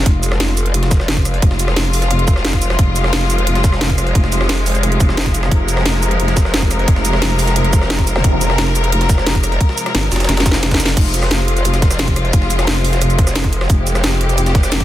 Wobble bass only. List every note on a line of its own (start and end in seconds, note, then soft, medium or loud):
0.06 1.41 F1 medium
1.42 2.77 F1 medium
2.79 4.14 F1 loud
4.15 4.99 F1 loud
5.00 5.50 F1 loud
5.51 6.86 F1 loud
6.88 8.23 F1 loud
8.24 9.59 F1 loud
9.95 10.10 G1 loud
10.12 10.27 F1 loud
10.29 10.96 F1 medium
10.97 12.32 F1 medium
12.33 13.68 F1 loud
13.70 14.84 F1 loud